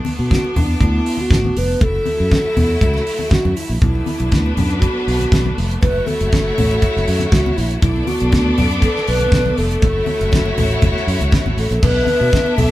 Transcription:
Already playing: A3 B3 D4
0.05 open hi-hat, high conga
0.19 B2
0.31 F#4, kick, snare, closed hi-hat, muted conga, high conga
0.44 muted conga
0.56 E2 D4, open hi-hat, low conga
0.81 D2 E4, kick, closed hi-hat
1.06 open hi-hat
1.17 F#4, high conga
1.31 A1, kick, snare, closed hi-hat
1.44 high conga
1.56 F1 B4, open hi-hat
1.81 F#1 F#3 A3 E4 A4, kick, closed hi-hat, muted conga, low conga
1.95 muted conga
2.06 open hi-hat, high conga
2.20 F#2
2.31 kick, snare, closed hi-hat, high conga
2.57 E2, open hi-hat, low conga
2.81 C#2, kick, closed hi-hat, muted conga
2.94 snare, muted conga
3.07 open hi-hat
3.19 high conga
3.31 F#4, kick, snare, closed hi-hat
3.45 F#2, muted conga, high conga
3.56 E4, open hi-hat
3.69 A#1
3.81 B1 F#3 A3 B3 D4 E4 B4, kick, closed hi-hat, muted conga, low conga
3.95 muted conga
4.06 open hi-hat, high conga
4.20 B1, closed hi-hat
4.32 D2, kick, snare, closed hi-hat, muted conga, high conga
4.46 muted conga
4.56 F#2 D4, open hi-hat, low conga
4.71 closed hi-hat
4.80 F#4, kick, closed hi-hat
5.07 B1, open hi-hat
5.19 closed hi-hat, high conga
5.32 B1, kick, snare, closed hi-hat
5.46 muted conga, high conga
5.58 F1, open hi-hat
5.71 closed hi-hat
5.81 F#1 F#3 A3 E4 F#4 B4 C#5, kick, closed hi-hat, low conga
6.06 A4, open hi-hat, high conga
6.21 F#1, closed hi-hat
6.32 F#1, kick, snare, closed hi-hat, high conga
6.58 A1, open hi-hat, low conga
6.71 closed hi-hat
6.82 kick, closed hi-hat, muted conga
6.97 F#1, snare
7.07 F#2, open hi-hat
7.19 closed hi-hat, high conga
7.31 C#2 F#4, kick, snare, closed hi-hat, muted conga
7.46 muted conga, high conga
7.57 A#1 E4, open hi-hat
7.71 closed hi-hat
7.82 B1 A3 B3 D4 E4 A4 D5, kick, closed hi-hat, low conga
7.96 muted conga
8.07 F#4, open hi-hat, high conga
8.20 B1, closed hi-hat
8.32 D2, kick, snare, closed hi-hat, muted conga, high conga
8.58 F#2, open hi-hat, low conga
8.71 closed hi-hat
8.82 A4, kick, closed hi-hat
8.96 snare
9.07 B1 B4, open hi-hat
9.19 closed hi-hat, high conga
9.32 B1, kick, snare, closed hi-hat, muted conga
9.46 muted conga, high conga
9.57 F1 A4, open hi-hat
9.71 closed hi-hat
9.82 F#1 F#3 A3 E4 F#4 C#5, kick, closed hi-hat, muted conga, low conga
10.06 open hi-hat, high conga
10.21 F#1, closed hi-hat
10.32 F#1, kick, snare, closed hi-hat, muted conga, high conga
10.45 muted conga
10.58 A1, open hi-hat, low conga
10.71 closed hi-hat
10.82 F#1, kick, closed hi-hat, muted conga, low conga
10.94 snare, muted conga
11.07 F#2, open hi-hat
11.19 C#2, closed hi-hat, high conga
11.32 kick, snare, closed hi-hat, muted conga
11.46 G#1, high conga
11.57 A1 A4, open hi-hat
11.71 A#1, closed hi-hat
11.82 B1 A3 B3 D4 E4 B4 E5, kick, crash, muted conga, low conga
12.06 open hi-hat, high conga
12.21 B2
12.33 kick, snare, closed hi-hat, high conga
12.46 muted conga
12.57 B1 A4, open hi-hat, low conga

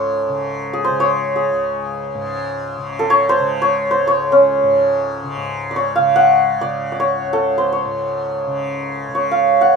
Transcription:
Already playing: C#2 G#2 C#3 A4 C#5
0.29 C#3
0.73 G#4
0.84 C5
0.90 C#3
1.00 C#5
1.36 G#4
1.52 C#2
2.15 G#2
2.77 C#3
2.99 A4
3.10 C#5
3.29 C5
3.40 C#3
3.62 C#5
3.91 C5
4.01 C#2
4.07 C#5
4.32 C#4
4.63 G#2
5.24 C#3
5.37 G#2
5.71 D5
5.76 C#5
5.96 C#3 F5
6.16 F#5
6.61 C#3 D5
6.92 D5
7.00 C#5
7.23 C#2
7.33 A4
7.58 C5
7.72 C#5
7.85 G#2
8.47 C#3
9.09 C#3
9.15 C#5
9.31 F5
9.61 F#5
9.72 C#2

